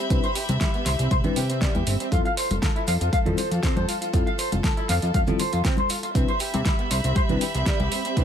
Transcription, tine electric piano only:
0, 0, Header, 1, 2, 480
1, 0, Start_track
1, 0, Key_signature, 0, "major"
1, 0, Tempo, 504202
1, 99, Time_signature, 4, 2, 24, 8
1, 7846, End_track
2, 0, Start_track
2, 0, Title_t, "Tine electric piano"
2, 0, Program_c, 0, 4
2, 95, Note_on_c, 0, 55, 73
2, 97, Note_on_c, 0, 60, 66
2, 100, Note_on_c, 0, 62, 66
2, 102, Note_on_c, 0, 64, 66
2, 104, Note_on_c, 0, 71, 80
2, 234, Note_off_c, 0, 55, 0
2, 235, Note_off_c, 0, 60, 0
2, 236, Note_off_c, 0, 62, 0
2, 238, Note_off_c, 0, 64, 0
2, 239, Note_off_c, 0, 71, 0
2, 1180, Note_on_c, 0, 55, 85
2, 1183, Note_on_c, 0, 60, 76
2, 1186, Note_on_c, 0, 62, 80
2, 1189, Note_on_c, 0, 64, 77
2, 1191, Note_on_c, 0, 71, 96
2, 1308, Note_off_c, 0, 55, 0
2, 1310, Note_off_c, 0, 60, 0
2, 1311, Note_off_c, 0, 62, 0
2, 1313, Note_off_c, 0, 64, 0
2, 1314, Note_off_c, 0, 71, 0
2, 2013, Note_on_c, 0, 55, 74
2, 2016, Note_on_c, 0, 60, 67
2, 2018, Note_on_c, 0, 64, 65
2, 2022, Note_on_c, 0, 65, 67
2, 2023, Note_on_c, 0, 69, 83
2, 2153, Note_off_c, 0, 55, 0
2, 2155, Note_off_c, 0, 60, 0
2, 2156, Note_off_c, 0, 64, 0
2, 2158, Note_off_c, 0, 65, 0
2, 2158, Note_off_c, 0, 69, 0
2, 3098, Note_on_c, 0, 55, 84
2, 3100, Note_on_c, 0, 60, 78
2, 3103, Note_on_c, 0, 64, 81
2, 3106, Note_on_c, 0, 65, 77
2, 3108, Note_on_c, 0, 69, 96
2, 3227, Note_off_c, 0, 55, 0
2, 3228, Note_off_c, 0, 60, 0
2, 3229, Note_off_c, 0, 64, 0
2, 3231, Note_off_c, 0, 65, 0
2, 3232, Note_off_c, 0, 69, 0
2, 3932, Note_on_c, 0, 55, 72
2, 3934, Note_on_c, 0, 60, 69
2, 3936, Note_on_c, 0, 64, 67
2, 3938, Note_on_c, 0, 65, 67
2, 3941, Note_on_c, 0, 69, 77
2, 4073, Note_off_c, 0, 55, 0
2, 4074, Note_off_c, 0, 60, 0
2, 4075, Note_off_c, 0, 64, 0
2, 4076, Note_off_c, 0, 65, 0
2, 4077, Note_off_c, 0, 69, 0
2, 5017, Note_on_c, 0, 55, 83
2, 5021, Note_on_c, 0, 60, 78
2, 5023, Note_on_c, 0, 64, 78
2, 5026, Note_on_c, 0, 65, 76
2, 5028, Note_on_c, 0, 69, 94
2, 5147, Note_off_c, 0, 55, 0
2, 5149, Note_off_c, 0, 60, 0
2, 5149, Note_off_c, 0, 64, 0
2, 5151, Note_off_c, 0, 65, 0
2, 5152, Note_off_c, 0, 69, 0
2, 5853, Note_on_c, 0, 55, 74
2, 5855, Note_on_c, 0, 60, 65
2, 5858, Note_on_c, 0, 62, 66
2, 5860, Note_on_c, 0, 64, 66
2, 5863, Note_on_c, 0, 71, 79
2, 5993, Note_off_c, 0, 55, 0
2, 5994, Note_off_c, 0, 60, 0
2, 5995, Note_off_c, 0, 62, 0
2, 5997, Note_off_c, 0, 64, 0
2, 5998, Note_off_c, 0, 71, 0
2, 6940, Note_on_c, 0, 55, 85
2, 6944, Note_on_c, 0, 60, 79
2, 6946, Note_on_c, 0, 62, 78
2, 6948, Note_on_c, 0, 64, 78
2, 6950, Note_on_c, 0, 71, 93
2, 7068, Note_off_c, 0, 55, 0
2, 7070, Note_off_c, 0, 60, 0
2, 7071, Note_off_c, 0, 62, 0
2, 7072, Note_off_c, 0, 64, 0
2, 7073, Note_off_c, 0, 71, 0
2, 7774, Note_on_c, 0, 55, 73
2, 7777, Note_on_c, 0, 60, 66
2, 7779, Note_on_c, 0, 62, 67
2, 7781, Note_on_c, 0, 64, 67
2, 7785, Note_on_c, 0, 71, 78
2, 7846, Note_off_c, 0, 55, 0
2, 7846, Note_off_c, 0, 60, 0
2, 7846, Note_off_c, 0, 62, 0
2, 7846, Note_off_c, 0, 64, 0
2, 7846, Note_off_c, 0, 71, 0
2, 7846, End_track
0, 0, End_of_file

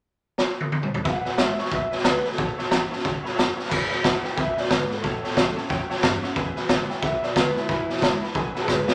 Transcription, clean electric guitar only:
0, 0, Header, 1, 2, 480
1, 0, Start_track
1, 0, Tempo, 331858
1, 1520, Time_signature, 4, 2, 24, 8
1, 12935, End_track
2, 0, Start_track
2, 0, Title_t, "Clean electric guitar"
2, 0, Program_c, 0, 27
2, 1520, Note_on_c, 0, 78, 82
2, 1988, Note_off_c, 0, 78, 0
2, 2016, Note_on_c, 0, 76, 84
2, 2295, Note_off_c, 0, 76, 0
2, 2312, Note_on_c, 0, 73, 83
2, 2486, Note_off_c, 0, 73, 0
2, 2496, Note_on_c, 0, 76, 80
2, 2791, Note_off_c, 0, 76, 0
2, 2791, Note_on_c, 0, 73, 88
2, 2966, Note_off_c, 0, 73, 0
2, 2977, Note_on_c, 0, 71, 96
2, 3288, Note_off_c, 0, 71, 0
2, 3288, Note_on_c, 0, 69, 91
2, 3740, Note_off_c, 0, 69, 0
2, 6160, Note_on_c, 0, 79, 85
2, 6332, Note_off_c, 0, 79, 0
2, 6367, Note_on_c, 0, 76, 91
2, 6633, Note_off_c, 0, 76, 0
2, 6642, Note_on_c, 0, 74, 86
2, 6840, Note_off_c, 0, 74, 0
2, 6840, Note_on_c, 0, 71, 78
2, 7109, Note_off_c, 0, 71, 0
2, 7133, Note_on_c, 0, 69, 89
2, 8048, Note_off_c, 0, 69, 0
2, 9981, Note_on_c, 0, 79, 89
2, 10153, Note_off_c, 0, 79, 0
2, 10159, Note_on_c, 0, 76, 90
2, 10445, Note_off_c, 0, 76, 0
2, 10466, Note_on_c, 0, 74, 82
2, 10640, Note_off_c, 0, 74, 0
2, 10646, Note_on_c, 0, 71, 95
2, 10928, Note_off_c, 0, 71, 0
2, 10933, Note_on_c, 0, 64, 92
2, 11863, Note_off_c, 0, 64, 0
2, 12379, Note_on_c, 0, 68, 89
2, 12390, Note_on_c, 0, 71, 97
2, 12552, Note_off_c, 0, 68, 0
2, 12561, Note_off_c, 0, 71, 0
2, 12570, Note_on_c, 0, 68, 69
2, 12578, Note_on_c, 0, 71, 86
2, 12836, Note_off_c, 0, 68, 0
2, 12847, Note_off_c, 0, 71, 0
2, 12857, Note_on_c, 0, 68, 68
2, 12865, Note_on_c, 0, 71, 85
2, 12935, Note_off_c, 0, 68, 0
2, 12935, Note_off_c, 0, 71, 0
2, 12935, End_track
0, 0, End_of_file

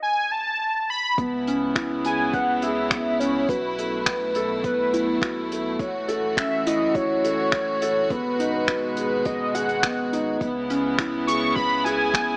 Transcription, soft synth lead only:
0, 0, Header, 1, 2, 480
1, 0, Start_track
1, 0, Key_signature, 4, "minor"
1, 0, Tempo, 576923
1, 981, Time_signature, 4, 2, 24, 8
1, 10289, End_track
2, 0, Start_track
2, 0, Title_t, "Soft synth lead"
2, 0, Program_c, 0, 80
2, 20, Note_on_c, 0, 80, 96
2, 261, Note_on_c, 0, 81, 100
2, 274, Note_off_c, 0, 80, 0
2, 741, Note_off_c, 0, 81, 0
2, 749, Note_on_c, 0, 83, 106
2, 968, Note_off_c, 0, 83, 0
2, 1710, Note_on_c, 0, 80, 113
2, 1946, Note_on_c, 0, 78, 120
2, 1959, Note_off_c, 0, 80, 0
2, 2189, Note_on_c, 0, 76, 105
2, 2201, Note_off_c, 0, 78, 0
2, 2660, Note_on_c, 0, 73, 94
2, 2673, Note_off_c, 0, 76, 0
2, 2904, Note_on_c, 0, 71, 108
2, 2917, Note_off_c, 0, 73, 0
2, 3863, Note_off_c, 0, 71, 0
2, 3866, Note_on_c, 0, 71, 92
2, 4550, Note_off_c, 0, 71, 0
2, 5301, Note_on_c, 0, 76, 102
2, 5549, Note_on_c, 0, 75, 90
2, 5561, Note_off_c, 0, 76, 0
2, 5788, Note_on_c, 0, 73, 107
2, 5800, Note_off_c, 0, 75, 0
2, 6747, Note_on_c, 0, 71, 106
2, 6760, Note_off_c, 0, 73, 0
2, 7703, Note_on_c, 0, 75, 116
2, 7716, Note_off_c, 0, 71, 0
2, 7942, Note_on_c, 0, 78, 112
2, 7955, Note_off_c, 0, 75, 0
2, 8421, Note_off_c, 0, 78, 0
2, 9378, Note_on_c, 0, 85, 104
2, 9603, Note_off_c, 0, 85, 0
2, 9613, Note_on_c, 0, 83, 117
2, 9854, Note_on_c, 0, 80, 111
2, 9866, Note_off_c, 0, 83, 0
2, 10289, Note_off_c, 0, 80, 0
2, 10289, End_track
0, 0, End_of_file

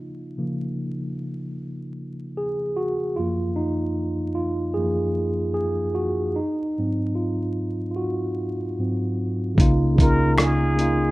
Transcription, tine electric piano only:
0, 0, Header, 1, 2, 480
1, 0, Start_track
1, 0, Key_signature, -5, "major"
1, 0, Tempo, 800000
1, 1908, Time_signature, 4, 2, 24, 8
1, 6667, End_track
2, 0, Start_track
2, 0, Title_t, "Tine electric piano"
2, 0, Program_c, 0, 4
2, 0, Control_c, 0, 64, 127
2, 0, Note_on_c, 0, 49, 47
2, 0, Note_on_c, 0, 53, 44
2, 0, Note_on_c, 0, 58, 54
2, 205, Note_off_c, 0, 49, 0
2, 208, Note_off_c, 0, 53, 0
2, 210, Note_off_c, 0, 58, 0
2, 228, Note_on_c, 0, 49, 49
2, 231, Note_on_c, 0, 53, 46
2, 233, Note_on_c, 0, 58, 54
2, 566, Note_off_c, 0, 49, 0
2, 568, Note_off_c, 0, 53, 0
2, 569, Note_off_c, 0, 58, 0
2, 1424, Note_on_c, 0, 68, 91
2, 1659, Note_on_c, 0, 66, 86
2, 1673, Note_off_c, 0, 68, 0
2, 1898, Note_on_c, 0, 65, 92
2, 1910, Note_on_c, 0, 42, 53
2, 1911, Note_off_c, 0, 66, 0
2, 1913, Note_on_c, 0, 53, 47
2, 1916, Note_on_c, 0, 58, 61
2, 1917, Control_c, 0, 64, 0
2, 2018, Control_c, 0, 64, 127
2, 2136, Note_on_c, 0, 63, 80
2, 2150, Note_off_c, 0, 65, 0
2, 2247, Note_off_c, 0, 42, 0
2, 2249, Note_off_c, 0, 53, 0
2, 2250, Note_off_c, 0, 58, 0
2, 2610, Note_on_c, 0, 65, 84
2, 2637, Note_off_c, 0, 63, 0
2, 2845, Note_on_c, 0, 68, 94
2, 2863, Note_on_c, 0, 42, 50
2, 2864, Note_on_c, 0, 53, 46
2, 2866, Note_off_c, 0, 65, 0
2, 2868, Note_on_c, 0, 58, 53
2, 3081, Note_off_c, 0, 42, 0
2, 3082, Note_off_c, 0, 53, 0
2, 3084, Note_off_c, 0, 58, 0
2, 3317, Note_off_c, 0, 68, 0
2, 3324, Note_on_c, 0, 68, 91
2, 3567, Note_on_c, 0, 66, 88
2, 3584, Note_off_c, 0, 68, 0
2, 3814, Note_on_c, 0, 63, 83
2, 3825, Note_off_c, 0, 66, 0
2, 3835, Control_c, 0, 64, 0
2, 3959, Control_c, 0, 64, 127
2, 4069, Note_on_c, 0, 44, 49
2, 4073, Note_on_c, 0, 54, 44
2, 4074, Note_on_c, 0, 60, 56
2, 4291, Note_on_c, 0, 65, 73
2, 4316, Note_off_c, 0, 63, 0
2, 4407, Note_off_c, 0, 44, 0
2, 4409, Note_off_c, 0, 54, 0
2, 4410, Note_off_c, 0, 60, 0
2, 4739, Note_off_c, 0, 65, 0
2, 4746, Note_on_c, 0, 65, 50
2, 4777, Note_on_c, 0, 66, 78
2, 4784, Note_off_c, 0, 65, 0
2, 5274, Note_on_c, 0, 44, 45
2, 5278, Note_on_c, 0, 54, 41
2, 5279, Note_on_c, 0, 60, 53
2, 5479, Note_off_c, 0, 66, 0
2, 5488, Note_off_c, 0, 44, 0
2, 5489, Note_off_c, 0, 54, 0
2, 5490, Note_off_c, 0, 60, 0
2, 5730, Note_on_c, 0, 49, 87
2, 5744, Note_on_c, 0, 58, 84
2, 5756, Control_c, 0, 64, 0
2, 5756, Note_on_c, 0, 63, 83
2, 5767, Note_on_c, 0, 65, 99
2, 5874, Control_c, 0, 64, 127
2, 5947, Note_off_c, 0, 49, 0
2, 5954, Note_off_c, 0, 58, 0
2, 5960, Note_off_c, 0, 63, 0
2, 5965, Note_off_c, 0, 65, 0
2, 5973, Note_on_c, 0, 49, 86
2, 5984, Note_on_c, 0, 58, 66
2, 5997, Note_on_c, 0, 63, 75
2, 6008, Note_on_c, 0, 65, 86
2, 6397, Note_off_c, 0, 49, 0
2, 6402, Note_off_c, 0, 58, 0
2, 6408, Note_off_c, 0, 63, 0
2, 6414, Note_off_c, 0, 65, 0
2, 6454, Note_on_c, 0, 49, 68
2, 6462, Note_on_c, 0, 58, 63
2, 6475, Note_on_c, 0, 63, 67
2, 6486, Note_on_c, 0, 65, 81
2, 6667, Note_off_c, 0, 49, 0
2, 6667, Note_off_c, 0, 58, 0
2, 6667, Note_off_c, 0, 63, 0
2, 6667, Note_off_c, 0, 65, 0
2, 6667, End_track
0, 0, End_of_file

